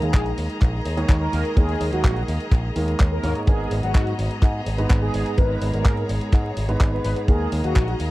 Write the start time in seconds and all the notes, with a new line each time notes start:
Already playing: D#3 G#3 A#3 D#4 G#4 A#4 D#5 A#5
0.02 D#2 G#4, closed hi-hat
0.14 A#1, kick, clap, closed hi-hat
0.26 closed hi-hat
0.38 D#2, open hi-hat
0.50 closed hi-hat
0.62 A#1, kick, clap, closed hi-hat
0.85 D#2, open hi-hat
0.97 D#3 G#3 A#3 D#4 C#5, closed hi-hat
1.09 D#2, kick, clap, closed hi-hat
1.21 A#4
1.33 D#2, open hi-hat
1.45 closed hi-hat
1.57 D#2 D#3 G#3 A#3 D#4 G#4 A#4, kick, closed hi-hat
1.69 closed hi-hat
1.81 D#2, open hi-hat
1.92 D#2 F#4, closed hi-hat
2.04 A#1, kick, clap, closed hi-hat
2.16 closed hi-hat
2.28 D#2, open hi-hat
2.40 closed hi-hat
2.52 A#1, kick, clap, closed hi-hat
2.76 D#2 D#3 G#3 A#3 D#4 A#4, open hi-hat
2.88 closed hi-hat
3.00 D#2, kick, clap, closed hi-hat
3.12 A#4
3.24 D#2 G#2 G#3 A#3 D#4 C#5, open hi-hat
3.35 closed hi-hat
3.47 G#1 G#2 G#3 B3 D#4 G#4 A#4 D#5 A#5, kick, closed hi-hat
3.71 G#1, open hi-hat
3.83 G#1 F#4, closed hi-hat
3.95 G#2, kick, clap, closed hi-hat
4.07 closed hi-hat
4.19 G#1, open hi-hat
4.31 closed hi-hat
4.42 G#2, kick, clap, closed hi-hat
4.66 G#1, open hi-hat
4.78 G#2 G#3 B3 D#4 B4, closed hi-hat
4.90 G#1, kick, clap, closed hi-hat
5.02 G#4
5.14 G#1, open hi-hat
5.26 closed hi-hat
5.38 G#1 G#2 G#3 B3 D#4 A#4 B4 C#5, kick, closed hi-hat
5.62 G#1, open hi-hat
5.73 G#1 A#4, closed hi-hat
5.85 G#2, kick, clap, closed hi-hat
5.97 closed hi-hat
6.09 G#1, open hi-hat
6.21 closed hi-hat
6.33 G#2, kick, clap, closed hi-hat
6.57 G#1, open hi-hat
6.69 G#2 G#3 B3 D#4 B4, closed hi-hat
6.81 G#1, kick, clap, closed hi-hat
6.92 B4
7.05 G#1, open hi-hat
7.16 closed hi-hat
7.28 D#2 D#3 G#3 A#3 D#4 G#4 A#4 D#5 A#5, kick, closed hi-hat
7.52 D#2, open hi-hat
7.64 D#2 F#4, closed hi-hat
7.76 A#1, kick, clap, closed hi-hat
7.88 closed hi-hat
8.00 D#2, open hi-hat